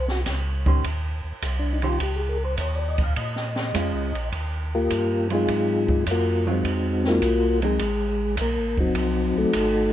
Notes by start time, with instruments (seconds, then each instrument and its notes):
Already playing: tonewheel organ C2
0.08 tonewheel organ F#4, snare
0.26 tonewheel organ C#2, kick, snare, hi-hat pedal, ride
0.66 hollow-body jazz guitar D#3 C#4 G4 C5, kick
0.84 tonewheel organ D#2, kick, ride
1.24 tonewheel organ D#2
1.42 tonewheel organ C2, kick, hi-hat pedal, ride
1.59 tonewheel organ D4
1.73 tonewheel organ D#4
1.82 hollow-body jazz guitar D#3 C#4 G4 C5, ride
1.88 tonewheel organ F4
2.00 tonewheel organ C#2 G4, kick, ride
2.16 tonewheel organ G#4
2.29 tonewheel organ A#4
2.45 tonewheel organ C5
2.57 tonewheel organ D#2 C#5, kick, hi-hat pedal, ride
2.75 tonewheel organ D5
2.88 tonewheel organ D#5
2.98 kick, ride
3.04 tonewheel organ F5
3.16 tonewheel organ A#2 D#5, kick, ride
3.36 snare
3.56 snare
3.74 tonewheel organ F2, hollow-body jazz guitar G#3 C#4 F4, kick, hi-hat pedal, ride
3.93 tonewheel organ C#2
4.12 tonewheel organ A#1, ride
4.32 tonewheel organ D#2, kick, ride
4.75 tonewheel organ A#3 F4 G4 A#4
4.90 tonewheel organ G2, kick, hi-hat pedal, ride
5.30 hollow-body jazz guitar F#3 C4 F4, tonewheel organ G#3 F4 G#4, ride
5.34 tonewheel organ D#4
5.48 tonewheel organ G#2, kick, ride
5.88 kick
6.06 tonewheel organ F#2, kick, hi-hat pedal, ride
6.11 tonewheel organ A#3 F4 F#4 A#4
6.47 hollow-body jazz guitar F#3 C4 F4, tonewheel organ C4 D#4 F#4
6.51 tonewheel organ G#3
6.64 tonewheel organ F2, kick, ride
7.04 tonewheel organ A#3 F4 F#4 A#4, snare
7.22 tonewheel organ C2, kick, hi-hat pedal, ride
7.62 hollow-body jazz guitar F#3 C4 D#4, tonewheel organ G#3 G#4, ride
7.79 tonewheel organ A1, kick, ride
8.37 tonewheel organ B1 A#4, kick, hi-hat pedal, ride
8.42 tonewheel organ A#3
8.56 tonewheel organ A1
8.76 tonewheel organ F#1 D#4 F#4, kick
8.80 tonewheel organ F#3 C4
8.95 tonewheel organ C2, kick, ride
9.36 tonewheel organ C2 A3 D#4 F#4 A4
9.53 tonewheel organ G#1, kick, hi-hat pedal, ride